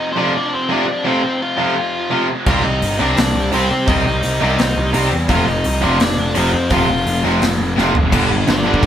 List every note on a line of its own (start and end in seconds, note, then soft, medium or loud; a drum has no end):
0.00 0.18 F2 loud
0.00 0.16 C3 medium
0.00 0.16 F3 medium
0.00 2.26 C4 medium
0.00 0.11 D#4 medium
0.00 0.12 D#5 medium
0.13 0.31 F2 medium
0.13 0.31 F3 medium
0.13 0.17 C5 medium
0.17 0.31 C3 medium
0.17 0.32 A3 loud
0.17 0.32 C4 medium
0.17 0.34 D4 medium
0.17 0.32 F4 loud
0.17 0.34 D5 medium
0.36 0.52 D4 medium
0.36 0.54 D5 medium
0.54 0.70 C4 medium
0.54 0.71 C5 medium
0.69 0.84 F2 loud
0.69 0.84 C3 medium
0.69 0.84 F3 loud
0.69 0.85 A3 medium
0.69 0.85 C4 loud
0.69 1.04 D4 medium
0.69 0.85 F4 loud
0.69 1.06 D5 medium
1.04 1.20 F2 medium
1.04 1.20 C3 medium
1.04 1.19 F3 medium
1.04 1.20 A3 medium
1.04 1.20 C4 loud
1.04 1.39 C4 medium
1.04 1.20 F4 medium
1.04 1.39 C5 medium
1.42 2.26 F4 medium
1.42 2.26 F5 medium
1.57 1.73 F2 medium
1.57 1.73 C3 medium
1.57 1.72 F3 medium
1.57 1.73 A3 medium
1.57 1.73 C4 medium
1.57 1.73 F4 medium
2.10 2.25 F2 medium
2.10 2.26 C3 loud
2.10 2.26 F3 loud
2.10 2.26 A3 medium
2.10 2.26 C4 medium
2.10 2.26 F4 loud
2.46 2.63 C2 loud
2.46 2.61 C3 medium
2.46 2.62 D#3 medium
2.46 2.62 G3 medium
2.46 2.62 C4 medium
2.46 2.64 F4 medium
2.46 2.62 G4 loud
2.46 2.64 F5 medium
2.46 kick loud
2.46 crash medium
2.64 2.81 C2 medium
2.64 2.98 D#4 medium
2.64 3.00 D#5 medium
2.82 2.99 G1 medium
2.82 open hi-hat medium
2.99 3.16 C2 medium
2.99 3.14 C3 loud
2.99 3.15 D#3 medium
2.99 3.15 G3 medium
2.99 3.15 C4 medium
2.99 3.49 D4 medium
2.99 3.15 G4 medium
2.99 3.49 D5 medium
3.17 3.34 C2 medium
3.17 snare loud
3.17 open hi-hat medium
3.35 3.52 C2 medium
3.52 3.70 C2 medium
3.52 3.67 C3 medium
3.52 3.67 D#3 medium
3.52 3.68 G3 loud
3.52 3.68 C4 loud
3.52 3.87 C4 medium
3.52 3.68 G4 medium
3.52 3.90 C5 medium
3.52 open hi-hat medium
3.70 3.87 C3 medium
3.88 4.05 C2 medium
3.88 4.02 C3 medium
3.88 4.03 D#3 loud
3.88 4.03 G3 medium
3.88 4.03 C4 medium
3.88 5.08 D#4 medium
3.88 4.03 G4 loud
3.88 5.08 D#5 loud
3.88 kick loud
3.88 open hi-hat medium
4.06 4.23 C2 medium
4.23 4.41 C2 medium
4.23 open hi-hat medium
4.41 4.58 C2 medium
4.41 4.56 C3 medium
4.41 4.56 D#3 medium
4.41 4.56 G3 loud
4.41 4.56 C4 medium
4.41 4.56 G4 loud
4.59 4.76 C2 loud
4.59 snare loud
4.59 open hi-hat medium
4.77 4.94 C2 medium
4.93 5.11 C2 medium
4.93 5.08 C3 medium
4.93 5.09 D#3 loud
4.93 5.09 G3 medium
4.93 5.09 C4 loud
4.93 5.09 G4 loud
4.93 open hi-hat medium
5.12 5.29 E2 medium
5.29 5.46 F1 medium
5.29 5.44 F2 medium
5.29 5.44 C3 medium
5.29 5.44 F3 loud
5.29 5.44 A3 medium
5.29 5.44 C4 loud
5.29 5.44 F4 loud
5.29 5.47 F4 medium
5.29 5.48 F5 medium
5.29 kick loud
5.29 open hi-hat medium
5.48 5.65 F1 medium
5.48 5.81 D#4 medium
5.48 5.83 D#5 medium
5.64 5.82 C2 loud
5.64 open hi-hat medium
5.81 6.00 F1 medium
5.81 5.96 F2 medium
5.81 5.97 C3 loud
5.81 5.97 F3 medium
5.81 5.97 A3 medium
5.81 5.97 C4 medium
5.81 6.33 D4 medium
5.81 5.98 F4 loud
5.81 6.38 D5 medium
6.00 6.17 F1 medium
6.00 snare loud
6.00 open hi-hat medium
6.18 6.35 F1 medium
6.35 6.53 F1 medium
6.35 6.50 F2 medium
6.35 6.50 C3 loud
6.35 6.50 F3 medium
6.35 6.50 A3 loud
6.35 6.50 C4 loud
6.35 6.70 C4 medium
6.35 6.50 F4 loud
6.35 6.73 C5 medium
6.35 open hi-hat medium
6.54 6.70 F2 medium
6.70 6.88 F1 loud
6.70 6.85 F2 loud
6.70 6.85 C3 medium
6.70 6.85 F3 loud
6.70 6.85 A3 medium
6.70 6.86 C4 medium
6.70 6.86 F4 loud
6.70 7.22 F4 medium
6.70 7.21 F5 medium
6.70 kick loud
6.70 open hi-hat medium
6.89 7.06 F1 medium
7.07 7.23 F1 loud
7.07 open hi-hat medium
7.23 7.41 F1 medium
7.23 7.38 F2 medium
7.23 7.39 C3 medium
7.23 7.38 F3 medium
7.23 7.38 A3 medium
7.23 7.39 C4 loud
7.23 7.39 F4 medium
7.42 7.59 F1 loud
7.42 snare loud
7.42 open hi-hat medium
7.59 7.76 F1 medium
7.76 7.94 F1 medium
7.76 7.92 F2 loud
7.76 7.92 C3 loud
7.76 7.91 F3 medium
7.76 7.91 A3 loud
7.76 7.91 C4 loud
7.76 7.92 F4 medium
7.76 snare medium
7.95 8.12 F#1 medium
7.95 floor tom medium
8.12 8.24 G1 loud
8.12 8.29 G2 medium
8.12 8.29 D3 medium
8.12 8.29 G3 loud
8.12 kick loud
8.12 crash loud
8.12 crash medium
8.30 8.42 G1 medium
8.30 8.46 G2 medium
8.30 8.46 D3 medium
8.47 8.72 G1 medium
8.47 8.63 G2 medium
8.47 8.64 D3 medium
8.47 8.67 F4 medium
8.47 snare loud
8.47 crash medium
8.52 8.67 D5 medium
8.65 8.81 G2 medium
8.65 8.81 D3 medium
8.65 8.82 G3 medium
8.65 8.83 F4 medium
8.65 8.84 D5 medium
8.74 kick medium
8.82 8.86 G1 loud
8.82 8.86 G2 medium
8.82 8.86 D3 medium
8.82 kick loud